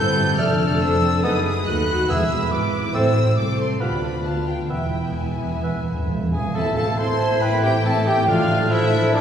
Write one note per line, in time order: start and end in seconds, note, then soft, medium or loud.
0.00 0.38 G1 medium
0.00 0.38 G2 medium
0.00 0.37 A3 medium
0.00 0.38 B3 medium
0.00 0.36 C4 medium
0.00 0.18 E4 medium
0.00 0.37 A4 medium
0.00 0.36 C5 medium
0.00 0.37 G6 loud
0.18 0.39 G4 medium
0.38 1.23 F1 medium
0.38 1.23 F2 medium
0.38 0.53 A3 medium
0.38 1.22 A3 medium
0.38 0.81 A3 medium
0.38 1.22 D4 medium
0.38 0.52 A4 medium
0.38 1.22 A4 medium
0.38 1.24 A4 medium
0.38 0.79 D5 medium
0.38 0.53 D5 medium
0.38 0.80 F6 loud
0.81 1.03 D4 medium
0.81 1.24 C5 medium
0.81 1.22 E6 loud
0.81 1.24 E6 loud
1.03 1.24 C4 medium
1.23 1.66 F#1 medium
1.23 1.65 F#2 medium
1.23 1.66 A3 medium
1.23 1.38 B3 medium
1.23 1.67 B3 medium
1.23 1.66 D#4 medium
1.23 1.66 G#4 medium
1.23 1.39 A4 medium
1.23 1.65 B4 medium
1.23 1.66 B4 medium
1.23 1.39 D#5 medium
1.23 1.44 D#6 loud
1.23 1.30 D#6 loud
1.45 1.51 D#6 medium
1.45 1.66 D#6 loud
1.66 2.08 D#2 medium
1.66 2.08 A3 medium
1.66 2.10 A3 medium
1.66 2.09 D#4 medium
1.66 1.87 F#4 medium
1.66 2.08 B4 medium
1.66 2.08 D#5 medium
1.66 2.08 F#6 loud
1.66 2.09 F#6 loud
1.88 2.09 F#4 medium
2.08 2.52 E1 medium
2.08 2.69 E2 medium
2.08 2.52 E2 medium
2.08 2.52 G#3 medium
2.08 2.95 G#3 medium
2.08 2.24 B3 medium
2.08 2.93 E4 medium
2.08 2.24 G#4 medium
2.08 2.51 G#4 medium
2.08 2.93 B4 medium
2.08 2.50 E5 medium
2.08 2.24 E5 medium
2.08 2.53 E6 loud
2.08 2.52 E6 loud
2.51 2.95 G#1 medium
2.51 2.95 G#2 medium
2.51 2.72 B3 medium
2.51 3.37 E4 medium
2.51 2.94 B4 medium
2.51 2.96 D6 medium
2.51 2.94 D6 loud
2.73 2.94 B3 medium
2.94 3.36 A1 medium
2.94 3.36 A2 medium
2.94 3.55 A2 medium
2.94 3.78 A3 medium
2.94 3.09 C4 medium
2.94 3.16 C4 medium
2.94 3.79 E4 medium
2.94 3.09 A4 medium
2.94 3.80 C5 medium
2.94 3.10 E5 medium
2.94 3.38 E6 loud
2.94 3.37 E6 loud
3.17 3.79 C4 medium
3.37 3.80 C2 medium
3.37 3.81 A4 medium
3.37 3.60 D6 medium
3.37 3.58 D6 loud
3.59 3.82 C6 medium
3.59 3.80 C6 medium
3.80 4.70 D2 medium
3.80 3.95 B3 medium
3.80 4.69 B3 medium
3.80 4.24 D4 medium
3.80 4.70 F4 medium
3.80 4.02 G4 medium
3.80 4.69 B4 medium
3.80 3.96 B4 medium
3.80 4.23 D5 medium
3.80 3.96 F5 medium
3.80 4.23 B5 medium
3.80 4.24 B5 medium
4.03 4.11 F4 medium
4.24 4.69 D4 medium
4.24 4.69 F4 medium
4.24 4.70 F5 medium
4.24 4.47 A5 medium
4.24 4.30 A5 medium
4.46 4.69 G5 medium
4.46 4.53 G5 medium
4.69 6.30 E1 medium
4.69 6.30 E2 medium
4.69 4.77 E2 soft
4.69 4.86 B3 medium
4.69 5.15 B3 medium
4.69 6.34 B3 medium
4.69 6.30 E4 medium
4.69 5.16 E4 medium
4.69 4.86 B4 medium
4.69 5.15 B4 soft
4.69 4.86 E5 medium
4.69 6.29 E5 medium
4.69 5.16 G5 medium
4.69 5.19 G5 medium
4.79 4.86 E2 soft
4.87 4.94 E2 soft
4.95 5.02 E2 soft
5.04 5.10 E2 soft
5.11 5.18 E2 soft
5.16 5.27 E2 soft
5.16 6.29 B3 medium
5.16 6.29 E4 medium
5.16 6.14 B4 medium
5.16 6.09 G#5 medium
5.28 5.35 E2 soft
5.36 5.42 E2 medium
5.44 5.51 E2 medium
5.52 5.59 E2 medium
5.60 5.66 E2 medium
5.60 5.80 B3 medium
5.60 5.79 B4 medium
5.60 5.80 E5 medium
5.68 5.74 E2 medium
5.76 5.82 E2 medium
5.83 5.90 E2 medium
5.91 5.98 E2 medium
5.99 6.05 E2 medium
6.07 6.13 E2 medium
6.15 6.22 E2 medium
6.23 6.29 E2 medium
6.31 6.37 E2 medium
6.31 6.53 G#4 medium
6.31 6.53 E5 medium
6.31 6.53 G#5 medium
6.38 6.45 E2 medium
6.47 6.54 E2 loud
6.54 9.21 A1 medium
6.54 7.16 A2 loud
6.54 9.21 A2 medium
6.54 9.21 A3 medium
6.54 6.65 C4 medium
6.54 8.24 E4 medium
6.54 6.65 E4 medium
6.54 6.75 A4 medium
6.54 6.76 A4 medium
6.54 6.78 E5 loud
6.54 6.75 A5 medium
6.66 6.76 A3 medium
6.66 6.75 C4 medium
6.76 6.86 C4 medium
6.76 6.87 E4 medium
6.76 6.97 A4 medium
6.76 6.86 A4 medium
6.76 6.99 F5 medium
6.76 6.97 A5 loud
6.76 6.97 A5 medium
6.87 6.98 A3 medium
6.87 6.96 C4 medium
6.97 7.07 C4 medium
6.97 7.08 E4 medium
6.97 7.41 C5 loud
6.97 7.41 C5 medium
6.97 7.43 A5 medium
6.97 7.40 C6 medium
6.97 7.40 C6 loud
7.08 7.20 A3 medium
7.08 7.18 C4 medium
7.20 7.29 C4 medium
7.20 7.31 E4 medium
7.30 7.41 A3 medium
7.30 7.40 C4 medium
7.41 7.51 C4 medium
7.41 7.52 E4 medium
7.41 7.62 B4 loud
7.41 7.63 B4 loud
7.41 7.64 G5 loud
7.41 7.63 B5 loud
7.52 7.63 A3 medium
7.52 7.62 C4 medium
7.63 7.73 C4 medium
7.63 7.74 E4 medium
7.63 7.73 G4 medium
7.63 7.84 E5 medium
7.63 7.84 G5 loud
7.63 7.84 G5 medium
7.74 7.85 A3 medium
7.74 7.84 C4 medium
7.85 7.95 C4 medium
7.85 7.95 E4 medium
7.85 8.09 A4 loud
7.85 8.06 A4 medium
7.85 8.05 E5 medium
7.85 8.06 A5 loud
7.96 8.07 A3 medium
7.96 8.06 C4 medium
8.06 8.16 C4 medium
8.06 8.17 E4 medium
8.06 8.17 G4 medium
8.06 8.30 G4 medium
8.06 8.12 E5 medium
8.06 8.28 G5 loud
8.17 8.28 A3 medium
8.17 8.28 C4 medium
8.28 8.88 A2 loud
8.28 8.38 F3 medium
8.28 9.21 D4 medium
8.28 8.38 D4 medium
8.28 9.21 D4 loud
8.28 8.73 F4 loud
8.28 8.70 F4 loud
8.28 8.72 D5 loud
8.28 8.71 F5 loud
8.28 8.70 F5 loud
8.40 8.50 A3 medium
8.40 8.50 F4 medium
8.50 8.60 F3 medium
8.50 8.60 D4 medium
8.61 8.71 A3 medium
8.61 8.71 F4 medium
8.70 8.81 F3 medium
8.70 8.81 D4 medium
8.70 9.14 E4 loud
8.70 9.14 C5 loud
8.70 9.13 E5 loud
8.82 8.93 A3 medium
8.82 8.93 F4 medium
8.93 9.03 F3 medium
8.93 9.03 D4 medium
9.04 9.14 A3 medium
9.04 9.14 F4 medium
9.13 9.21 F3 medium
9.13 9.21 D4 loud
9.13 9.21 D4 medium
9.13 9.21 D4 loud
9.13 9.21 A4 loud
9.13 9.21 D5 loud